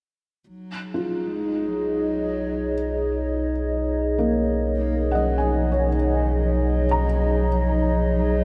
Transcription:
0, 0, Header, 1, 5, 480
1, 0, Start_track
1, 0, Tempo, 779221
1, 300, Time_signature, 4, 2, 24, 8
1, 2217, Tempo, 766284
1, 5249, End_track
2, 0, Start_track
2, 0, Title_t, "Felt piano"
2, 0, Program_c, 0, 0
2, 426, Control_c, 0, 64, 127
2, 580, Note_on_c, 0, 65, 55
2, 1676, Note_off_c, 0, 65, 0
2, 2583, Note_on_c, 0, 58, 66
2, 3166, Note_on_c, 0, 78, 61
2, 3189, Note_on_c, 0, 75, 58
2, 3332, Note_on_c, 0, 80, 58
2, 3544, Note_on_c, 0, 73, 58
2, 3642, Note_off_c, 0, 75, 0
2, 3679, Note_off_c, 0, 58, 0
2, 4256, Note_off_c, 0, 78, 0
2, 4293, Note_on_c, 0, 82, 58
2, 4385, Note_off_c, 0, 80, 0
2, 4635, Note_off_c, 0, 73, 0
2, 5249, Note_off_c, 0, 82, 0
2, 5249, End_track
3, 0, Start_track
3, 0, Title_t, "Ambient pad"
3, 0, Program_c, 1, 92
3, 286, Note_on_c, 1, 63, 67
3, 493, Note_on_c, 1, 68, 63
3, 648, Note_on_c, 1, 75, 59
3, 966, Note_on_c, 1, 73, 73
3, 5249, Note_off_c, 1, 63, 0
3, 5249, Note_off_c, 1, 68, 0
3, 5249, Note_off_c, 1, 73, 0
3, 5249, Note_off_c, 1, 75, 0
3, 5249, End_track
4, 0, Start_track
4, 0, Title_t, "Cello"
4, 0, Program_c, 2, 42
4, 302, Note_on_c, 2, 54, 79
4, 783, Note_on_c, 2, 56, 80
4, 792, Note_off_c, 2, 54, 0
4, 1022, Note_on_c, 2, 54, 91
4, 1031, Note_off_c, 2, 56, 0
4, 1979, Note_off_c, 2, 54, 0
4, 2948, Note_on_c, 2, 58, 88
4, 3167, Note_off_c, 2, 58, 0
4, 3182, Note_on_c, 2, 54, 88
4, 3427, Note_on_c, 2, 53, 73
4, 3437, Note_off_c, 2, 54, 0
4, 3666, Note_on_c, 2, 51, 73
4, 3675, Note_off_c, 2, 53, 0
4, 3898, Note_on_c, 2, 53, 73
4, 3907, Note_off_c, 2, 51, 0
4, 4123, Note_off_c, 2, 53, 0
4, 4126, Note_on_c, 2, 54, 79
4, 4617, Note_on_c, 2, 53, 86
4, 4627, Note_off_c, 2, 54, 0
4, 5091, Note_on_c, 2, 54, 87
4, 5100, Note_off_c, 2, 53, 0
4, 5249, Note_off_c, 2, 54, 0
4, 5249, End_track
5, 0, Start_track
5, 0, Title_t, "Analog synth bass"
5, 0, Program_c, 3, 38
5, 296, Note_on_c, 3, 35, 78
5, 5249, Note_off_c, 3, 35, 0
5, 5249, End_track
0, 0, End_of_file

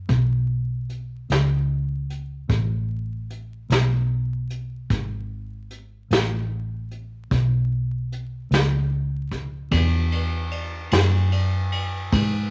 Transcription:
0, 0, Header, 1, 3, 480
1, 0, Start_track
1, 0, Key_signature, 4, "major"
1, 0, Tempo, 802461
1, 55, Time_signature, 12, 3, 24, 8
1, 7479, End_track
2, 0, Start_track
2, 0, Title_t, "Fingered electric bass"
2, 0, Program_c, 0, 33
2, 52, Note_on_c, 0, 35, 76
2, 752, Note_off_c, 0, 35, 0
2, 776, Note_on_c, 0, 37, 76
2, 1474, Note_off_c, 0, 37, 0
2, 1489, Note_on_c, 0, 33, 76
2, 2190, Note_off_c, 0, 33, 0
2, 2212, Note_on_c, 0, 35, 79
2, 2912, Note_off_c, 0, 35, 0
2, 2932, Note_on_c, 0, 32, 73
2, 3632, Note_off_c, 0, 32, 0
2, 3652, Note_on_c, 0, 33, 81
2, 4352, Note_off_c, 0, 33, 0
2, 4374, Note_on_c, 0, 35, 71
2, 5073, Note_off_c, 0, 35, 0
2, 5089, Note_on_c, 0, 37, 76
2, 5790, Note_off_c, 0, 37, 0
2, 5810, Note_on_c, 0, 40, 75
2, 6510, Note_off_c, 0, 40, 0
2, 6534, Note_on_c, 0, 42, 86
2, 7233, Note_off_c, 0, 42, 0
2, 7255, Note_on_c, 0, 44, 73
2, 7479, Note_off_c, 0, 44, 0
2, 7479, End_track
3, 0, Start_track
3, 0, Title_t, "Drums"
3, 54, Note_on_c, 9, 36, 92
3, 54, Note_on_c, 9, 42, 69
3, 114, Note_off_c, 9, 36, 0
3, 114, Note_off_c, 9, 42, 0
3, 535, Note_on_c, 9, 42, 46
3, 595, Note_off_c, 9, 42, 0
3, 776, Note_on_c, 9, 42, 66
3, 788, Note_on_c, 9, 38, 96
3, 836, Note_off_c, 9, 42, 0
3, 848, Note_off_c, 9, 38, 0
3, 1257, Note_on_c, 9, 42, 53
3, 1317, Note_off_c, 9, 42, 0
3, 1492, Note_on_c, 9, 42, 77
3, 1493, Note_on_c, 9, 36, 99
3, 1552, Note_off_c, 9, 42, 0
3, 1553, Note_off_c, 9, 36, 0
3, 1976, Note_on_c, 9, 42, 57
3, 2036, Note_off_c, 9, 42, 0
3, 2214, Note_on_c, 9, 42, 73
3, 2226, Note_on_c, 9, 38, 100
3, 2274, Note_off_c, 9, 42, 0
3, 2286, Note_off_c, 9, 38, 0
3, 2694, Note_on_c, 9, 42, 57
3, 2754, Note_off_c, 9, 42, 0
3, 2932, Note_on_c, 9, 36, 96
3, 2932, Note_on_c, 9, 42, 70
3, 2992, Note_off_c, 9, 36, 0
3, 2992, Note_off_c, 9, 42, 0
3, 3414, Note_on_c, 9, 42, 52
3, 3473, Note_off_c, 9, 42, 0
3, 3654, Note_on_c, 9, 42, 69
3, 3665, Note_on_c, 9, 38, 96
3, 3714, Note_off_c, 9, 42, 0
3, 3725, Note_off_c, 9, 38, 0
3, 4135, Note_on_c, 9, 42, 50
3, 4195, Note_off_c, 9, 42, 0
3, 4374, Note_on_c, 9, 36, 99
3, 4375, Note_on_c, 9, 42, 70
3, 4434, Note_off_c, 9, 36, 0
3, 4435, Note_off_c, 9, 42, 0
3, 4858, Note_on_c, 9, 42, 51
3, 4918, Note_off_c, 9, 42, 0
3, 5095, Note_on_c, 9, 42, 71
3, 5106, Note_on_c, 9, 38, 100
3, 5155, Note_off_c, 9, 42, 0
3, 5166, Note_off_c, 9, 38, 0
3, 5572, Note_on_c, 9, 36, 62
3, 5572, Note_on_c, 9, 42, 55
3, 5631, Note_off_c, 9, 42, 0
3, 5632, Note_off_c, 9, 36, 0
3, 5811, Note_on_c, 9, 51, 81
3, 5812, Note_on_c, 9, 36, 95
3, 5870, Note_off_c, 9, 51, 0
3, 5872, Note_off_c, 9, 36, 0
3, 6053, Note_on_c, 9, 51, 59
3, 6112, Note_off_c, 9, 51, 0
3, 6289, Note_on_c, 9, 51, 57
3, 6349, Note_off_c, 9, 51, 0
3, 6528, Note_on_c, 9, 51, 78
3, 6539, Note_on_c, 9, 38, 99
3, 6587, Note_off_c, 9, 51, 0
3, 6599, Note_off_c, 9, 38, 0
3, 6771, Note_on_c, 9, 51, 58
3, 6830, Note_off_c, 9, 51, 0
3, 7010, Note_on_c, 9, 51, 62
3, 7070, Note_off_c, 9, 51, 0
3, 7253, Note_on_c, 9, 36, 115
3, 7253, Note_on_c, 9, 51, 86
3, 7312, Note_off_c, 9, 36, 0
3, 7313, Note_off_c, 9, 51, 0
3, 7479, End_track
0, 0, End_of_file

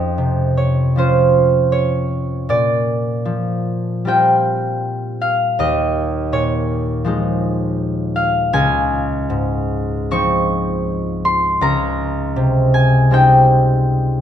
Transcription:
0, 0, Header, 1, 2, 480
1, 0, Start_track
1, 0, Tempo, 777202
1, 1534, Time_signature, 4, 2, 24, 8
1, 2983, Tempo, 739827
1, 5383, Tempo, 790514
1, 6343, Tempo, 755668
1, 8947, End_track
2, 0, Start_track
2, 0, Title_t, "Harp"
2, 0, Program_c, 0, 46
2, 0, Note_on_c, 0, 41, 53
2, 0, Note_on_c, 0, 61, 40
2, 0, Note_on_c, 0, 75, 69
2, 0, Note_on_c, 0, 77, 71
2, 109, Note_on_c, 0, 48, 37
2, 354, Note_on_c, 0, 73, 61
2, 591, Note_on_c, 0, 53, 38
2, 593, Note_off_c, 0, 61, 0
2, 600, Note_on_c, 0, 61, 39
2, 605, Note_on_c, 0, 65, 44
2, 608, Note_on_c, 0, 72, 68
2, 848, Note_off_c, 0, 75, 0
2, 1055, Note_off_c, 0, 73, 0
2, 1062, Note_on_c, 0, 73, 70
2, 1537, Note_on_c, 0, 46, 56
2, 1542, Note_on_c, 0, 74, 77
2, 1556, Note_off_c, 0, 41, 0
2, 1556, Note_off_c, 0, 48, 0
2, 1557, Note_off_c, 0, 73, 0
2, 1561, Note_off_c, 0, 61, 0
2, 1574, Note_off_c, 0, 77, 0
2, 2002, Note_off_c, 0, 53, 0
2, 2009, Note_on_c, 0, 53, 41
2, 2501, Note_on_c, 0, 55, 41
2, 2508, Note_off_c, 0, 65, 0
2, 2512, Note_on_c, 0, 60, 42
2, 2515, Note_on_c, 0, 65, 44
2, 2521, Note_on_c, 0, 79, 78
2, 3018, Note_off_c, 0, 72, 0
2, 3232, Note_on_c, 0, 77, 76
2, 3475, Note_on_c, 0, 39, 59
2, 3480, Note_on_c, 0, 75, 83
2, 3490, Note_off_c, 0, 55, 0
2, 3490, Note_off_c, 0, 79, 0
2, 3491, Note_off_c, 0, 46, 0
2, 3491, Note_off_c, 0, 60, 0
2, 3492, Note_off_c, 0, 74, 0
2, 3952, Note_on_c, 0, 46, 44
2, 3956, Note_on_c, 0, 73, 75
2, 4417, Note_off_c, 0, 53, 0
2, 4420, Note_on_c, 0, 53, 45
2, 4428, Note_on_c, 0, 56, 46
2, 4436, Note_on_c, 0, 63, 50
2, 5022, Note_off_c, 0, 65, 0
2, 5134, Note_off_c, 0, 77, 0
2, 5142, Note_on_c, 0, 77, 72
2, 5384, Note_on_c, 0, 37, 68
2, 5386, Note_on_c, 0, 80, 96
2, 5403, Note_off_c, 0, 46, 0
2, 5404, Note_off_c, 0, 39, 0
2, 5849, Note_on_c, 0, 44, 48
2, 5970, Note_off_c, 0, 75, 0
2, 6337, Note_off_c, 0, 53, 0
2, 6341, Note_off_c, 0, 63, 0
2, 6342, Note_on_c, 0, 53, 49
2, 6345, Note_on_c, 0, 60, 51
2, 6346, Note_on_c, 0, 85, 97
2, 6350, Note_on_c, 0, 63, 51
2, 6419, Note_off_c, 0, 73, 0
2, 6881, Note_off_c, 0, 56, 0
2, 7066, Note_on_c, 0, 84, 94
2, 7290, Note_off_c, 0, 37, 0
2, 7297, Note_on_c, 0, 37, 68
2, 7303, Note_on_c, 0, 82, 100
2, 7311, Note_off_c, 0, 44, 0
2, 7311, Note_off_c, 0, 77, 0
2, 7312, Note_off_c, 0, 53, 0
2, 7312, Note_off_c, 0, 80, 0
2, 7312, Note_off_c, 0, 85, 0
2, 7774, Note_on_c, 0, 48, 50
2, 8013, Note_on_c, 0, 80, 80
2, 8246, Note_on_c, 0, 55, 48
2, 8247, Note_off_c, 0, 60, 0
2, 8255, Note_on_c, 0, 60, 50
2, 8257, Note_off_c, 0, 63, 0
2, 8265, Note_on_c, 0, 63, 55
2, 8265, Note_on_c, 0, 79, 80
2, 8426, Note_off_c, 0, 80, 0
2, 8947, Note_off_c, 0, 37, 0
2, 8947, Note_off_c, 0, 48, 0
2, 8947, Note_off_c, 0, 55, 0
2, 8947, Note_off_c, 0, 60, 0
2, 8947, Note_off_c, 0, 63, 0
2, 8947, Note_off_c, 0, 79, 0
2, 8947, Note_off_c, 0, 82, 0
2, 8947, Note_off_c, 0, 84, 0
2, 8947, End_track
0, 0, End_of_file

